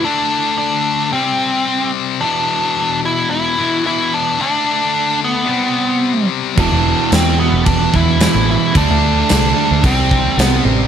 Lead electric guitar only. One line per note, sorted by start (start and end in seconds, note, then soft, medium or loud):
0.05 0.57 D4 loud
0.58 1.09 D4 loud
1.13 1.90 C4 medium
2.21 2.99 D4 loud
3.05 3.29 E4 loud
3.31 3.86 E4 loud
3.87 4.14 E4 loud
4.14 4.41 D4 medium
4.42 5.18 D4 loud
5.24 6.27 B3 medium
6.60 7.09 D4 loud
7.15 7.40 C4 loud
7.40 7.65 B3 medium
7.66 7.94 D4 loud
7.96 8.21 E4 loud
8.22 8.49 E4 loud
8.51 8.75 E4 loud
8.77 9.29 D4 loud
9.30 9.86 D4 loud
9.86 10.39 C4 medium
10.39 10.63 B3 medium